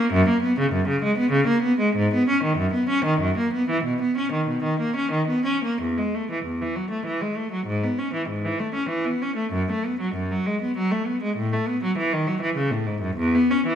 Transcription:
Already playing: A#3
0.13 F#2
0.29 A#3
0.43 B3
0.59 C#3
0.72 F#2
0.88 C#3
1.03 G#3
1.18 B3
1.32 C#3
1.48 A#3
1.62 B3
1.80 G#3
1.96 G#2
2.14 B3
2.29 C#4
2.44 D#3
2.58 F#2
2.74 B3
2.89 C#4
3.05 D#3
3.20 F#2
3.38 A#3
3.53 B3
3.70 E3
3.84 B2
4.02 B3
4.18 C#4
4.33 D#3
4.47 B2
4.63 D#3
4.80 A#3
4.96 C#4
5.12 D#3
5.28 B3
5.45 C#4
5.64 A#3
5.82 E2
5.97 G#3
6.15 A3
6.31 E3
6.45 E2
6.61 E3
6.75 F#3
6.91 A3
7.06 E3
7.21 G#3
7.36 A3
7.52 F#3
7.67 G#2
7.83 B3
7.98 C#4
8.14 E3
8.28 G#2
8.45 E3
8.59 A3
8.74 C#4
8.89 E3
9.05 B3
9.22 C#4
9.36 A3
9.52 F#2
9.71 A3
9.86 B3
10.00 F#3
10.15 F#2
10.31 F#3
10.46 G#3
10.62 B3
10.77 F#3
10.91 A3
11.07 B3
11.23 G#3
11.37 A2
11.53 A3
11.67 B3
11.84 F#3
11.98 E3
12.13 D#3
12.27 F#3
12.41 E3
12.57 C#3
12.71 A2
12.86 G#2
13.02 F#2
13.17 E2
13.35 B3
13.50 C#4
13.67 E3

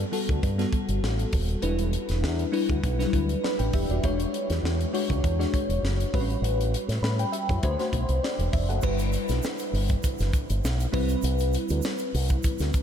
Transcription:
Already playing: G3 B3 F#4 A4
0.12 G3 B3 F#4 A4, open hi-hat
0.29 D2, kick, closed hi-hat
0.43 G2, kick, closed hi-hat
0.58 G3 B3 F#4 A4, snare, closed hi-hat
0.73 kick, closed hi-hat
0.89 G1, closed hi-hat
1.03 A1, snare
1.19 closed hi-hat
1.33 D#1, kick, open hi-hat
1.49 closed hi-hat
1.62 E1 G3 D4 E4 B4, closed hi-hat
1.79 closed hi-hat
1.93 closed hi-hat
2.09 E1, snare, closed hi-hat
2.23 E2, snare
2.39 closed hi-hat
2.52 G3 D4 E4 B4, open hi-hat
2.69 D2, kick, closed hi-hat
2.84 B1, kick, closed hi-hat
2.98 F#3 D4 E4 B4, snare, closed hi-hat
3.05 G3
3.13 D2, kick, closed hi-hat
3.29 closed hi-hat
3.43 D5 B5, snare
3.59 A1 B4 G5, closed hi-hat
3.73 E1 G4 E5, kick, open hi-hat
3.89 D#1 F#4 D5, closed hi-hat
4.04 E1 G#3 D4 F#4 C#5, kick, closed hi-hat
4.20 closed hi-hat
4.34 closed hi-hat
4.50 E2, snare, closed hi-hat
4.63 E2, snare
4.81 closed hi-hat
4.93 G#3 D4 F#4 C#5, open hi-hat
5.10 C#2, kick
5.24 E2, kick, closed hi-hat
5.39 G#3 D4 F#4 C#5, snare, closed hi-hat
5.54 kick, closed hi-hat
5.69 E1, closed hi-hat
5.83 F#1, snare
6.00 closed hi-hat
6.14 A1 G3 C4 F#4 B4, kick, open hi-hat
6.20 C#4
6.30 closed hi-hat
6.42 A1, closed hi-hat
6.61 closed hi-hat
6.74 closed hi-hat
6.88 A2, snare, closed hi-hat
7.02 A2 B5, snare
7.19 B4 G5, closed hi-hat
7.32 G4 E5, closed hi-hat
7.49 F#2 E4 C#5, kick, closed hi-hat
7.63 D2 A3 D4 F#4 C5, kick, closed hi-hat
7.78 A3 D4 F#4 C5, snare, closed hi-hat
7.93 B1, kick, closed hi-hat
8.09 C2, closed hi-hat
8.23 F#4 D5, snare
8.39 E1, closed hi-hat
8.53 F1 E5, kick, open hi-hat
8.69 F#1 A4 F#5, closed hi-hat
8.82 G1 G3 D4 E4 B4, kick, crash, shaker
8.99 closed hi-hat, shaker
9.12 closed hi-hat, shaker
9.28 B1, snare, closed hi-hat, shaker
9.43 snare, shaker
9.59 closed hi-hat, shaker
9.73 G1, open hi-hat
9.88 kick, shaker
10.03 kick, closed hi-hat, shaker
10.18 F#1, snare, closed hi-hat, shaker
10.33 kick, closed hi-hat, shaker
10.50 G1, closed hi-hat, shaker
10.64 B1, snare, shaker
10.80 closed hi-hat, shaker
10.92 C2 G3 C4 E4 B4, kick, open hi-hat
11.09 closed hi-hat, shaker
11.22 C2, closed hi-hat, shaker
11.39 closed hi-hat, shaker
11.53 closed hi-hat, shaker
11.69 D2, closed hi-hat, shaker
11.82 snare, shaker
11.98 closed hi-hat, shaker
12.14 C2, open hi-hat
12.29 kick, closed hi-hat, shaker
12.43 kick, closed hi-hat, shaker
12.59 D2, snare, closed hi-hat, shaker
12.73 kick, closed hi-hat, shaker

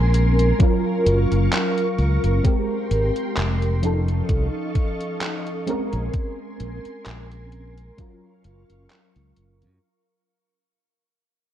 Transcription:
Already playing: A#1 G#3 C4 C#4 A#4 G#5 C6
0.14 closed hi-hat
0.39 closed hi-hat
0.59 F#3 C#4 F4 A#4 F5 C#6, kick, closed hi-hat
1.06 F#1, closed hi-hat
1.32 F#1, closed hi-hat
1.53 clap, closed hi-hat
1.78 closed hi-hat
1.98 C#2, closed hi-hat
2.24 F#1, closed hi-hat
2.43 G#3 C4 G4 A#4 G5 C6, kick, closed hi-hat
2.91 G#1, closed hi-hat
3.16 closed hi-hat
3.37 F1, clap, closed hi-hat
3.62 closed hi-hat
3.82 F3 C#4 D#4 A4 D#5 F5 C#6, closed hi-hat
4.08 closed hi-hat
4.29 C2, kick, closed hi-hat
4.75 kick, closed hi-hat
5.01 closed hi-hat
5.21 clap, closed hi-hat
5.47 closed hi-hat
5.66 G#3 C4 C#4 A#4 G#5 C6, closed hi-hat
5.93 A#1, closed hi-hat
6.14 kick, closed hi-hat
6.60 A#1, closed hi-hat
6.85 muted fingered electric bass stroke, closed hi-hat
7.06 A#1, clap, closed hi-hat
7.31 closed hi-hat
7.52 closed hi-hat
7.77 closed hi-hat
7.97 F#3 C#4 F4 A#4 F5 C#6, kick, closed hi-hat
8.44 F#1, closed hi-hat
8.70 F#1, closed hi-hat
8.90 clap, closed hi-hat
9.16 C#2, closed hi-hat
9.36 F#1, closed hi-hat
9.62 F#2, closed hi-hat

